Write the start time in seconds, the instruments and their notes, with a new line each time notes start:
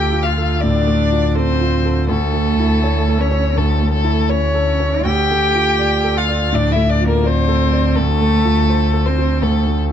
Already playing: grand piano D2 A3 F4 A4, double bass D2, cello G4, violin G5
0.13 grand piano F4
0.23 cello F4, violin F5
0.38 grand piano A4
0.60 grand piano A2, cello D4, violin D5
0.87 grand piano A3
1.12 grand piano F4
1.35 cello C4, grand piano A4, violin C5
1.61 grand piano F4
1.85 grand piano A4
2.09 grand piano D2, cello A3, violin A4
2.34 grand piano A3
2.59 grand piano E4
2.84 grand piano C#5
3.09 grand piano A4
3.20 cello C#4, violin C#5
3.32 grand piano C#5
3.56 grand piano D2, cello A3, violin A4
3.82 grand piano A3
3.93 cello A3, violin A4
4.04 grand piano E4
4.29 cello C#4, grand piano C#5, violin C#5
4.55 grand piano A4
4.80 grand piano C#5
5.05 grand piano D2, double bass D2, cello G4, violin G5
5.31 grand piano A3
5.55 grand piano F4
5.79 grand piano D5
6.04 grand piano A4
6.17 cello F4, violin F5
6.29 grand piano D5
6.52 grand piano A2, cello D4, violin D5
6.72 cello E4, violin E5
6.76 grand piano A3
6.88 cello D4, violin D5
7.01 grand piano F4
7.07 cello A#3, violin A#4
7.24 cello C4, violin C5, grand piano D5
7.48 grand piano A4
7.73 grand piano D5
7.95 grand piano D2, cello A3, violin A4
8.21 grand piano A3
8.45 grand piano F4
8.70 grand piano C5
8.93 grand piano A4
9.06 cello C4, violin C5
9.19 grand piano C5
9.42 grand piano D2, cello A3, violin A4
9.67 grand piano A3